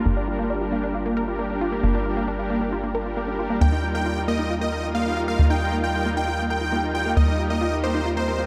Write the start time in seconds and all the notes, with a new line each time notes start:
0.06 G1 G3 A#3 D4 G4 A#4
0.17 D4
0.28 G3 D4 F4 G4 A#4
0.39 A#3
0.50 D4
0.61 G3 D4 F4 G4 A#4
0.72 A#3
0.83 D4
0.95 F4
1.06 A#3
1.17 G3 D4 G4 A#4
1.28 G3 D4 F4 G4 A#4
1.39 A#3
1.50 G3 D4 G4 A#4
1.61 G3 D4 F4 G4 A#4
1.72 A#3
1.83 G1 G3 A#3 D4 G4 A#4
1.95 D4
2.06 G3 D4 F4 G4 A#4
2.17 A#3
2.28 D4
2.39 G3 D4 F4 G4 A#4
2.50 A#3
2.61 D4
2.72 F4
2.84 A#3
2.95 G3 D4 G4 A#4
3.06 G3 D4 F4 G4 A#4
3.17 A#3
3.28 G3 D4 G4 A#4
3.39 G3 D4 F4 G4 A#4
3.50 A#3
3.61 D#2 G3 A#3 D#4 F4 A#4 G5
3.72 D#4
3.83 G3 D#4 F4 A#4
3.95 A#3 G5
4.06 F4
4.17 G3 D#4 F4 A#4
4.28 A#3 D#5
4.39 D#4
4.50 F4
4.61 A#3 D#5
4.72 G3 D#4 F4 A#4
4.83 G3 D#4 F4 A#4
4.95 A#3 F5
5.06 G3 D#4 F4 A#4
5.17 G3 D#4 F4 A#4
5.28 A#3 F5
5.39 D#2 G3 A#3 D#4 F4 A#4
5.50 D#4 G5
5.61 G3 D#4 F4 A#4
5.72 A#3
5.84 F4 G5
5.95 G3 D#4 F4 A#4
6.06 A#3
6.17 D#4 G5
6.28 F4
6.39 A#3
6.50 G3 D#4 F4 A#4 G5
6.61 G3 D#4 F4 A#4
6.72 A#3
6.83 G3 D#4 F4 A#4
6.94 G3 D#4 F4 A#4 G5
7.06 A#3
7.17 D#2 G3 A#3 D#4 G4 A#4 D#5
7.28 D#4
7.39 G3 D#4 F4 G4 A#4
7.50 A#3 D#5
7.61 F4
7.72 G3 D#4 F4 G4 A#4
7.83 A#3 C5
7.95 D#4
8.06 F4
8.17 A#3 C5
8.28 G3 D#4 G4 A#4
8.39 G3 D#4 F4 G4 A#4